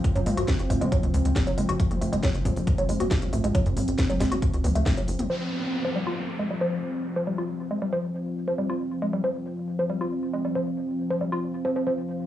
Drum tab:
HH |xxoxxxoxxxoxxxox|xxoxxxooxxoxxxox|xxoxxxoxxxoxoxox|----------------|
SD |----o-------o---|----o-------o---|----o-o-----o---|----------------|
T2 |--o-o--o-o--o-o-|-o-o--o-o--o-o--|o-o--o-o--o-o--o|----------------|
BD |o---o-o-o---o---|o---o-o-o---o---|o---o-o-o---o---|----------------|

HH |----------------|----------------|----------------|
SD |----------------|----------------|----------------|
T2 |----------------|----------------|----------------|
BD |----------------|----------------|----------------|